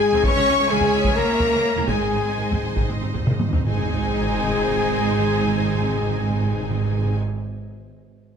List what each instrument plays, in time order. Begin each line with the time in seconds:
Already playing: cello section G#3, string section D#4 C5 D#5, trumpet section G#4, french horn section G#4, violin section G#5, flute section G#5
0.12 double bass section G#1, viola section C4 D#4, taiko low
0.24 double bass section C#2, viola section E3 G#3, string section C#4 C#5 E5, cello section C#4, trumpet section C#5, french horn section C#5, flute section C#6, violin section C#6, taiko
0.36 double bass section C#2, viola section G#3 C#4
0.48 double bass section C#2, viola section C#4 E4
0.59 double bass section C#2, viola section G#3 C#4
0.69 double bass section C#2, viola section E3 G#3, cello section G#3, french horn section G#4, trumpet section G#4, violin section G#5, flute section G#5
0.81 double bass section C#2, viola section G#3 C#4, taiko low
0.93 double bass section C#2, viola section C#4 E4
1.04 double bass section C#2, viola section E3 G#3, taiko
1.15 double bass section C#2, viola section G#3 C#4, cello section A#3, french horn section A#4, trumpet section A#4, flute section A#5, violin section A#5
1.28 double bass section C#2, viola section C#4 E4, taiko rim
1.40 double bass section C#2, viola section G#3 C#4, taiko low
1.52 double bass section C#2, viola section E3 G#3
1.76 double bass section C#2, viola section C#4 E4, taiko low
1.87 double bass section G#1, viola section D#3 G#3, cello section G#3, string section D#4 C5 D#5, french horn section G#4, trumpet section G#4, flute section G#5, violin section G#5, taiko
1.96 timpani G#2
2.00 double bass section G#1, viola section G#3 C4, taiko rim
2.04 timpani G#2
2.13 double bass section G#1, timpani G#2, viola section C4 D#4
2.21 timpani G#2, viola section G#3 C4
2.26 double bass section G#1, timpani G#2
2.37 double bass section G#1, timpani G#2, viola section D#3 G#3
2.45 timpani G#2
2.50 double bass section G#1, viola section G#3 C4, taiko low
2.54 timpani G#2
2.62 double bass section G#1, timpani G#2, viola section C4 D#4
2.71 timpani G#2
2.75 double bass section G#1, viola section D#3 G#3, taiko
2.80 timpani G#2
2.88 double bass section G#1, timpani G#2, viola section G#3 C4
2.96 timpani G#2
3.01 double bass section G#1, timpani G#2, viola section C4 D#4
3.13 double bass section G#1, timpani G#2, viola section G#3 C4, taiko low
3.22 timpani G#2
3.27 double bass section G#1, timpani G#2, viola section D#3 G#3, taiko mid
3.39 timpani G#2, taiko high
3.48 timpani G#2
3.53 double bass section G#1, viola section C4 D#4, taiko low
3.57 timpani G#2
3.66 double bass section G#1, timpani G#2, string section G#3 D#4 C5 D#5, cello section G#3, viola section C4 D#4, french horn section G#4, trumpet section G#4, flute section G#5, violin section G#5, sub drop
3.73 timpani G#2
3.80 timpani G#2
3.87 timpani G#2
3.94 timpani G#2
4.01 timpani G#2
4.08 timpani G#2
4.15 timpani G#2
4.22 timpani G#2
4.29 timpani G#2
4.36 timpani G#2
4.43 timpani G#2
4.50 timpani G#2
4.57 timpani G#2
4.64 timpani G#2
4.71 timpani G#2
4.78 timpani G#2
4.84 timpani G#2
4.91 timpani G#2
4.98 timpani G#2
5.05 timpani G#2
5.12 timpani G#2
5.19 timpani G#2
5.26 timpani G#2
5.33 timpani G#2
5.40 timpani G#2
5.47 timpani G#2
5.54 timpani G#2
5.60 timpani G#2
5.67 timpani G#2
5.75 timpani G#2
5.81 timpani G#2
5.89 timpani G#2
5.96 timpani G#2
6.02 timpani G#2
6.09 timpani G#2
6.16 timpani G#2
6.23 timpani G#2
6.29 timpani G#2
6.36 timpani G#2
6.42 timpani G#2
6.49 timpani G#2
6.55 timpani G#2
6.62 timpani G#2
6.70 timpani G#2
6.77 timpani G#2
6.85 timpani G#2
6.91 timpani G#2
6.99 timpani G#2
7.05 timpani G#2
7.12 timpani G#2